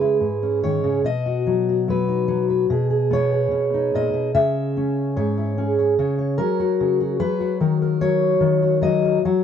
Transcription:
steel-string acoustic guitar
Already playing: C#3 G#3 B4
0.01 E4
0.20 G#2
0.43 C#4
0.64 D#3 C#5
0.84 C#3
1.04 B2 D#5
1.26 F#4
1.47 F#3
1.69 F#4
1.88 F#3 B4
2.08 D#4
2.28 F#3 F#4
2.50 B4
2.70 B2 G#4
2.90 G#4
3.11 B3 C#5
3.32 G#4
3.51 B2
3.74 D#4
3.95 A#2 D#5
4.13 B2
4.34 C#3 E5
4.77 C#4
5.16 G#2 C#5
5.38 E4
5.58 C#4 G#4
5.79 C#5
5.99 C#3 C#5
6.18 C#5
6.38 F#3 A#4
6.60 F#4
6.80 C#3
7.00 F#4
7.20 F#3 B4
7.41 F#4
7.60 D#3 A#4
7.82 A#4
8.01 F#3 C#5
8.40 D#3
8.62 F#4
8.82 F#3 D#5
9.05 A#4
9.25 F#3 F#5

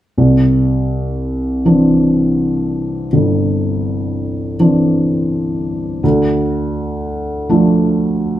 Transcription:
felt piano
0.18 C2
1.65 E3 C4 D4
3.13 G1
4.60 E3 C4 D4
6.03 D2
7.49 F3 A3 D4

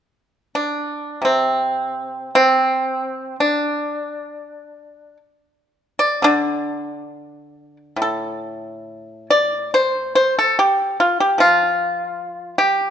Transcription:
pipa
0.55 D4
1.22 C3 C4
2.35 C4
3.40 D4
5.99 D5
6.22 D3 D4
7.96 A2
8.02 A4
9.30 D5
9.74 C5
10.15 C5
10.39 A4
10.59 G4
11.00 F4
11.20 G4
11.38 F3 F4
12.58 G4

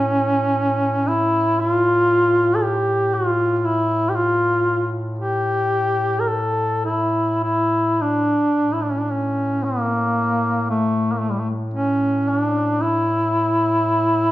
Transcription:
duduk
Already playing: A2 C#4
1.08 E4
1.60 F4
2.56 A4
2.63 G4
3.14 F4
3.59 F4
3.65 E4
4.09 G4
4.16 F4
5.19 G4
6.20 A#4
6.27 A4
6.85 E4
7.43 E4
8.02 D4
8.57 A2
8.74 E4
8.83 D4
8.92 C#4
9.01 D4
9.11 C#4
9.64 A#3
10.70 A3
11.12 A#3
11.20 A3
11.31 G3
11.39 A3
11.74 C#4
12.29 D4
12.81 E4

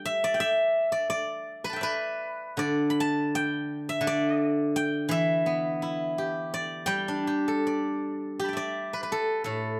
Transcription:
guzheng
Already playing: G3 G4 G5
0.05 E5
0.24 D5
0.34 G5
0.40 E5
0.92 D5
1.10 D5
1.64 B4 B5
1.69 G5 A5
1.76 E5
1.81 B4 D5
2.57 D3 D5
2.90 B5
3.00 A5
3.35 G5
3.89 E5
4.01 D3
4.07 D5
4.76 G5
5.09 E3 E5
5.46 B3
5.82 E4
6.18 G4
6.54 D5
6.86 G3 G5
7.08 D4
7.27 G4
7.48 A4
7.67 D5
8.39 G4
8.44 A5 B5
8.48 G5
8.53 D5 E5
8.93 B4
9.03 B4
9.12 A4
9.44 A2 A4

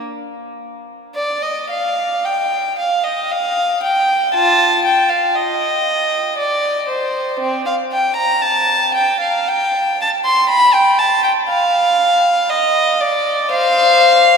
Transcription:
violin
1.15 D5
1.42 D#5
1.70 F5
2.25 G5
2.79 F5
3.04 D#5
3.31 F5
3.83 G5
4.34 F4 A5
4.85 G5
5.10 F5
5.35 D#5
6.38 D5
6.88 C5
7.40 C4
7.66 F5
7.93 G5
8.16 A#5
8.42 A5
8.94 G5
9.20 F5
9.48 G5
10.01 A5
10.25 C6
10.49 B5
10.73 G5
10.99 A5
11.24 G5
11.49 F5
12.50 D#5
13.00 D5
13.51 C5 F5

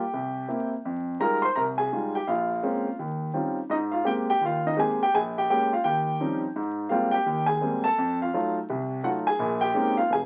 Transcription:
grand piano
Already playing: G4 G5
0.14 C2
0.48 A#3 C4 E4
0.85 F2
1.20 G3 G#3 D#4 F4 A#4 A#5
1.42 C5 C6
1.56 C2 A#4 A#5
1.78 G#4 G#5
1.92 G3 G#3 D#4 F4
2.15 G4 G5
2.27 A#1 F4 F5
2.63 G#3 A#3 C4 C#4
2.99 D#2
3.34 G3 C4 C#4 D#4 F4
3.70 G#2 D#4 D#5
3.92 F4 F5
4.04 G#3 A#3 C4 G4 G5
4.30 G4 G5
4.41 D#2 F4
4.46 F5
4.66 D#4 D#5
4.77 G#3 A#3 C4 G4 G#4 G#5
5.03 G4 G5
5.14 A#1 G#4 G#5
5.38 G4 G5
5.50 G#3 A#3 C#4 G4 G5
5.73 F4 F5
5.84 D#2 G4 G5
6.20 F3 G3 C4 C#4 D#4
6.56 G#2
6.89 G3 G#3 A#3 C4 F4 F5
7.11 G4 G5
7.26 D#2
7.46 G#4 G#5
7.61 G3 G#3 A#3 C4
7.84 A4 A5
7.98 F2
8.22 F4 F5
8.34 F#3 A3 D#4 F4
8.69 C2 C3
9.03 F#3 A3 D#4 F4 F#4 F#5
9.27 G#4 G#5
9.39 A#1 A#2
9.61 G4 G5
9.74 G#3 A#3 C4 C#4 D#4
9.97 F4 F5
10.10 F1 G#5
10.14 G#4

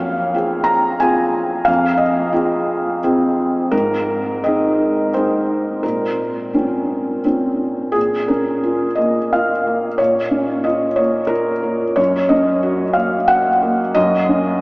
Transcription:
felt piano
Already playing: F2 F5
0.34 C4 F4 G#4
0.64 A#5
1.00 C4 F4 G#4 G#5
1.65 F2 F5
1.98 D#5
2.33 C4 F4 G#4
3.03 C4 F4 G#4
3.71 G#2 A#4
4.44 C4 D#4 G#4 D#5
5.14 C4 D#4 G#4 C5
5.83 A#2 A#4
6.53 C4 C#4 F4
7.25 C4 C#4 F4
7.92 A#2 G#4
8.28 C#4 A#4
8.63 F4
8.95 A#3 D#5
9.33 F4 F5
9.67 A#3
9.98 A#2 C#5
10.31 C#4
10.64 F4 D#5
10.96 A#3 C#5
11.27 F4 A#4
11.63 A#3
11.96 F#2 C#5
12.29 C#4 D#5
12.63 F#4
12.93 A#3 F5
13.27 F#4 F#5
13.62 A#3
13.95 F#2 D#5
14.29 C#4

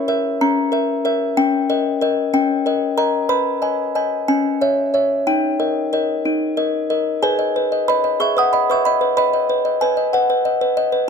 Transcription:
music box
Already playing: C#6
0.08 A#4 E5
0.41 C#4 A#5
0.72 A#4 E5
1.05 A#4 E5
1.37 C#4 G5
1.70 A#4 D#5
2.01 A#4 D#5
2.34 C#4 G5
2.66 A#4 D#5
2.97 A#4 D#5 A#5
3.29 B4 B5
3.62 D#5 G#5
3.95 D#5 G#5
4.28 C#4 G#5
4.61 C#5 E5
4.94 C#5 E5
5.27 D#4 G5
5.60 A#4 D#5
5.93 A#4 D#5
6.25 D#4
6.57 A#4 D#5
6.90 A#4 D#5
7.22 G#4 B4 G#5
7.39 D#5
7.56 B4
7.72 D#5
7.88 B4 D#5 B5
8.04 D#5
8.20 G#4 E5 C#6
8.37 B4 F#5 D#6
8.53 D#5 B5
8.70 B4 E5 C#6
8.85 D#5 B5
9.01 B4
9.17 B4 D#5 B5
9.33 D#5
9.49 B4
9.65 D#5
9.81 B4 G#5
9.97 D#5
10.13 B4 F#5
10.30 B4
10.45 D#5
10.61 B4
10.77 D#5
10.92 B4

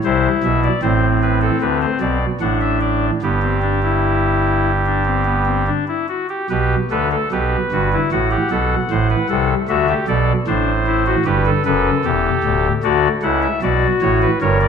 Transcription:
pipe organ
0.04 C2 C3 E4 C5
0.43 B1 B2 E5
0.63 D5
0.82 A1 A2 C4 C5
1.22 B4
1.42 A4
1.61 D2 D3 B4
1.81 C5
2.00 B1 B2 D5
2.40 A1 A2 D4 F#5
2.61 E5
2.81 D5
3.22 G1 G2 B3 G4
3.42 C4
3.62 D4
3.83 E4
4.86 D4
5.06 C4
5.25 B3
5.46 C4
5.67 D4
5.88 E4
6.08 F#4
6.29 G4
6.50 B1 B2 G4 B4
6.91 D2 D3 A4 B4
7.12 A4
7.32 B1 B2 G4 B4
7.72 G1 G2 F#4
7.93 E4
8.12 A1 A2 F#4 F#5
8.31 G4
8.51 B1 B2 A4
8.91 A1 A2 C5
9.10 B4
9.30 C2 C3 A4
9.68 D2 D3 F#4 E5
9.88 G4
10.08 B1 B2 A4 D5
10.47 A1 A2 D4 C5
10.86 E4
11.06 F#4
11.25 G1 G2 G4 B4
11.46 A4
11.65 F#1 F#2 A4 B4
12.04 E1 E2 G4
12.44 D1 D2
12.83 D2 D3 F#4 D5
13.22 C#2 C#3 E4 F#5
13.42 E5
13.62 B1 B2 F#4 D5
14.02 A1 A2 C#5
14.22 B4
14.41 G1 G2 A#4 C#5
14.61 D5

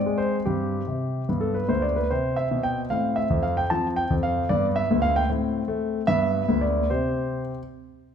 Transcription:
grand piano
Already playing: C4 D5
0.06 G#3
0.18 C5
0.45 G2 C4 G4
0.87 C3
1.29 G2 B3
1.41 A4
1.54 B4
1.68 D2 C5
1.82 D5
1.96 B4
2.11 C3 C4 C5
2.36 E5
2.51 B2
2.63 G5
2.90 A2 C4 F5
3.16 E5
3.30 F2
3.43 F5
3.57 G5
3.70 F3 C4 A5
3.96 G5
4.10 F2
4.23 F5
4.49 G2 B3 D5
4.76 E5
4.91 D2
5.02 F5
5.16 G5
5.30 A2 C4
5.68 A3
6.07 G2 B3 E5
6.48 D2
6.61 D5
6.90 C3 C4 G4 C5

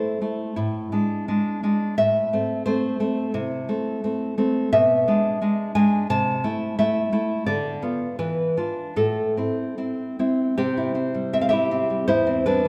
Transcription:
nylon-string guitar
Already playing: A3 E4 C5
0.21 A3 E4
0.56 A2 E4
0.92 G#3 D4
1.28 G#3 D4
1.63 G#3 D4
1.98 A2 E5
2.33 A3 C4
2.66 A3 C4 C5
3.00 A3 C4
3.34 C3 E4
3.69 A3 C4
4.04 A3 C4
4.38 A3 C4
4.73 B2 E5
5.08 G#3 D4
5.42 G#3 D4
5.75 G#3 D4 G#5
6.10 C3 A5
6.44 A3 E4
6.79 A3 E4 E5
7.12 A3 E4
7.46 D3 D5
7.82 B3 F4
8.19 E3 B4
8.57 D4 F4
8.96 A2 A4
9.37 C4 E4
9.78 C4 E4
10.19 C4 E4
10.58 C3 C4 G4
10.77 E4
10.95 C4
11.14 G3
11.33 C4 E5
11.41 F5
11.49 E4 G4 E5
11.71 C4
11.90 G3
12.08 E2 E4 C5
12.27 C4
12.46 G3 D4 B4

